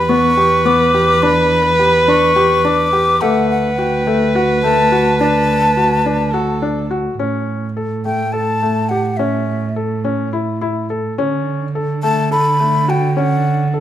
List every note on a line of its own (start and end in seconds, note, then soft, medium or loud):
0.00 3.24 E2 medium
0.00 3.21 B4 loud
0.00 0.10 B5 medium
0.09 0.32 B3 medium
0.09 0.67 C#6 loud
0.37 0.60 G4 medium
0.65 0.88 B3 medium
0.65 1.24 D6 loud
0.94 1.17 G4 medium
1.22 1.68 D4 medium
1.22 1.51 B5 loud
1.52 2.10 B5 loud
1.79 2.02 G4 medium
2.08 2.31 D4 medium
2.08 2.66 C#6 loud
2.36 2.59 G4 medium
2.65 2.87 D4 medium
2.65 3.23 D6 loud
2.93 3.16 G4 medium
3.21 7.16 D2 medium
3.21 3.67 A3 medium
3.21 6.34 B4 loud
3.21 3.50 F#5 medium
3.50 3.80 F#5 medium
3.78 4.01 F#4 medium
3.78 4.35 G5 medium
4.07 4.29 A3 medium
4.35 4.58 F#4 medium
4.63 4.86 A3 medium
4.63 5.16 A5 loud
4.92 5.15 F#4 medium
5.20 5.66 D4 medium
5.20 6.58 A5 loud
5.77 6.00 F#4 medium
6.06 6.28 D4 medium
6.33 6.57 F#4 medium
6.33 6.90 A4 medium
6.62 6.85 D4 medium
6.91 7.13 F#4 medium
7.19 11.19 A2 medium
7.19 7.65 C#4 medium
7.77 7.99 A4 medium
8.05 8.28 A3 medium
8.05 8.34 G5 medium
8.32 8.56 A4 medium
8.32 8.90 A5 medium
8.62 8.85 A3 medium
8.89 9.13 G4 medium
8.89 9.18 F#5 medium
9.17 9.64 C#4 medium
9.17 9.75 E5 medium
9.76 9.99 A4 medium
10.04 10.27 C#4 medium
10.33 10.55 E4 medium
10.61 10.84 E4 medium
10.90 11.12 A4 medium
11.18 13.80 D3 medium
11.18 11.64 C#4 medium
11.75 11.98 A4 medium
12.03 12.26 A3 medium
12.03 12.30 A5 loud
12.31 12.54 A4 medium
12.31 12.91 B5 loud
12.60 12.83 A3 medium
12.88 13.11 F#4 medium
12.88 13.20 G5 medium
13.17 13.62 C#4 medium
13.17 13.75 F#5 medium
13.74 13.80 A4 medium